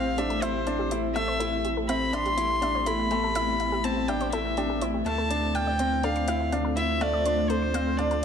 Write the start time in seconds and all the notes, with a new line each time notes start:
Already playing: A1 A3 C4 E4 G4 C5 F5
0.18 D4 G4 E5, closed hi-hat
0.30 A4, closed hi-hat
0.42 E4 C5 E5, closed hi-hat
0.67 D4 E5, closed hi-hat
0.79 G4
0.91 E4, closed hi-hat
1.15 A3 B3 E5, closed hi-hat
1.28 C5
1.40 E4 A4, closed hi-hat
1.65 G4, closed hi-hat
1.77 A4
1.89 C4 E5 B5, closed hi-hat
2.13 D4 E5 C6, closed hi-hat
2.26 G4, closed hi-hat
2.37 E4, closed hi-hat
2.62 D4 E5, closed hi-hat
2.75 C5
2.86 E4 A4 B5, closed hi-hat
3.11 A3 G4, closed hi-hat
3.24 A4
3.35 E4 E5, closed hi-hat
3.60 E5, closed hi-hat
3.72 G4
3.84 C4 A5, closed hi-hat
4.08 D4 E5 G5, closed hi-hat
4.21 C5, closed hi-hat
4.33 E4 A4 E5, closed hi-hat
4.57 D4 G4, closed hi-hat
4.70 G4
4.81 E4 C5, closed hi-hat
4.94 G4
5.06 D2 A3 D4 F4 C5 F5 A5, closed hi-hat
5.18 A4
5.30 D4, closed hi-hat
5.55 F5 G5, closed hi-hat
5.67 D5
5.79 C4 C5, closed hi-hat
6.03 D4 A4 F5, closed hi-hat
6.16 C6, closed hi-hat
6.28 E4 F5, closed hi-hat
6.52 D4 F5, closed hi-hat
6.65 A4
6.76 E4 E5, closed hi-hat
7.01 A3 D5 F5, closed hi-hat
7.13 D5
7.26 D4 C5, closed hi-hat
7.49 A4 C5, closed hi-hat
7.62 C6
7.74 C4 F5, closed hi-hat
7.98 D4 D5 F5, closed hi-hat
8.11 A4, closed hi-hat